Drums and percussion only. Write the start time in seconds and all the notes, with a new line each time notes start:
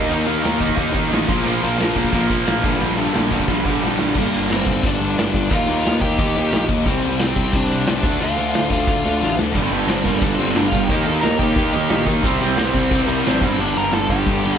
0.11 crash
0.28 crash
0.44 snare, crash
0.61 kick, crash
0.69 kick
0.77 kick, crash
0.94 kick, crash
1.12 snare, crash
1.29 kick, crash
1.46 crash
1.63 crash
1.79 snare, crash
1.96 kick, crash
2.04 kick
2.13 kick, crash
2.30 kick, crash
2.47 snare, crash
2.64 kick, crash
2.80 crash
2.98 crash
3.14 snare, crash
3.31 kick, crash
3.40 kick
3.48 kick, crash
3.65 kick, crash
3.83 snare
3.99 snare
4.14 kick, crash
4.32 crash
4.49 snare, crash
4.67 kick, crash
4.83 kick, crash
5.01 crash
5.18 snare, crash
5.34 kick, crash
5.51 kick, crash
5.68 crash
5.85 snare, crash
6.02 kick, crash
6.19 kick, crash
6.35 crash
6.52 snare, crash
6.69 kick, crash
6.85 kick, crash
7.03 crash
7.19 snare, crash
7.36 kick, crash
7.53 kick, crash
7.70 crash
7.86 snare, crash
8.03 kick, crash
8.21 crash
8.37 crash
8.54 snare, crash
8.70 kick, crash
8.87 kick, crash
9.05 crash
9.23 snare
9.39 snare
9.55 kick, crash
9.72 crash
9.89 snare, crash
10.05 kick, crash
10.22 kick, crash
10.38 crash
10.55 snare, crash
10.72 kick, crash
10.89 kick, crash
11.06 crash
11.22 snare, crash
11.39 kick, crash
11.56 kick, crash
11.73 crash
11.89 snare, crash
12.06 kick, crash
12.23 kick, crash
12.40 crash
12.56 snare, crash
12.74 kick, crash
12.91 kick, crash
13.09 crash
13.26 snare, crash
13.41 kick, crash
13.58 crash
13.74 crash
13.92 snare, crash
14.09 kick, crash
14.27 kick, crash
14.44 crash